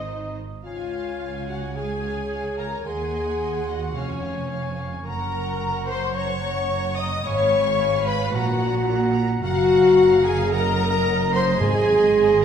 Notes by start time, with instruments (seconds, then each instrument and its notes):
Already playing: double bass section G#1, cello section D#3, french horn section C4 D#4, oboe D#4, viola section D#4, violin section C5 D#5, trumpet section D#5, flute D#5
0.64 double bass section C#2, cello section C#2, french horn section F4, viola section F4, clarinet C#5, violin section F5, flute F5, oboe G#5
0.79 violin section G#5
0.92 violin section F5
1.07 violin section G#5
1.21 violin section F5
1.35 violin section G#5
1.48 french horn section F#4, viola section F#4, violin section F5 F#5, flute F#5
1.64 violin section G#5
1.76 french horn section G#4, viola section G#4, clarinet C#5, violin section F5 G#5, flute G#5, oboe G#5
1.91 violin section G#5
2.04 violin section F5
2.18 violin section G#5
2.32 violin section F5
2.45 violin section G#5
2.57 french horn section A#4, viola section A#4, violin section F5 A#5, flute A#5
2.73 violin section G#5
2.84 cello section D#2, double bass section D#2, french horn section G#4, viola section G#4, violin section D#5 G#5, clarinet F#5, flute G#5, oboe C6
3.01 violin section F#5
3.14 violin section D#5
3.27 violin section F#5
3.41 violin section D#5
3.55 violin section F#5
3.67 french horn section F#4, viola section F#4, violin section D#5 F#5, flute F#5
3.82 violin section F#5
3.95 double bass section F1, cello section F2, viola section C#4, french horn section C#4, flute C#5, violin section C#5 F5, clarinet G#5, oboe C#6
4.09 violin section G#5
4.23 violin section F5
4.36 violin section G#5
4.50 violin section F5
4.65 violin section G#5
4.79 violin section F5
4.93 violin section G#5
5.05 double bass section F#1, cello section F#2, french horn section A#4, viola section A#4, clarinet F#5, violin section A#5, flute A#5, oboe C#6
5.20 violin section F#5
5.34 violin section A#5
5.47 violin section F#5
5.61 violin section A#5
5.76 violin section F#5
5.87 french horn section C5, viola section C5, violin section A#5 C6, flute C6
6.03 violin section F#5
6.14 french horn section C#5, viola section C#5, clarinet F#5, violin section A#5 C#6, oboe C#6, flute C#6
6.29 violin section F#5
6.44 violin section A#5
6.57 violin section F#5
6.71 violin section A#5
6.85 violin section F#5
6.97 viola section D#5, french horn section D#5, violin section A#5 D#6, flute D#6
7.11 violin section F#5
7.24 double bass section G#1, cello section G#2, viola section C#5, french horn section C#5, clarinet F5, violin section G#5 C#6, oboe B5, flute C#6
7.39 violin section F5
7.52 violin section G#5
7.67 violin section F5
7.79 violin section G#5
7.93 violin section F5
8.06 viola section B4, french horn section B4, violin section G#5 B5, flute B5
8.21 violin section F5
8.33 double bass section A#1, cello section A#2, viola section F#4, french horn section F#4, clarinet F#5, violin section F#5 A#5, flute F#5, oboe A#5
8.48 violin section F#5
8.62 violin section A#5
8.75 violin section F#5
8.89 violin section A#5
9.01 violin section F#5
9.16 violin section A#5
9.29 violin section F#5
9.42 double bass section F#1, cello section F#2, viola section F#4, french horn section F#4, clarinet F5, flute F#5, violin section F#5, oboe A#5
9.55 violin section F5
9.68 violin section F#5
9.82 violin section F5
9.95 violin section F#5
10.09 violin section F5
10.23 viola section G#4, french horn section G#4, violin section F#5 G#5, flute G#5
10.38 violin section F5
10.51 viola section A#4, french horn section A#4, clarinet D#5, violin section F#5 A#5, flute A#5, oboe A#5
10.65 violin section D#5
10.79 violin section F#5
10.91 violin section D#5
11.05 violin section F#5
11.18 violin section D#5
11.32 french horn section C5, viola section C5, violin section F#5 C6, flute C6
11.47 violin section D#5
11.60 double bass section G#1, timpani G#2, cello section G#2, viola section G#4, french horn section G#4, violin section C5 G#5, clarinet D#5, flute G#5, oboe C6
11.74 violin section D#5
11.87 violin section C5
12.01 violin section D#5
12.15 violin section C5
12.29 violin section D#5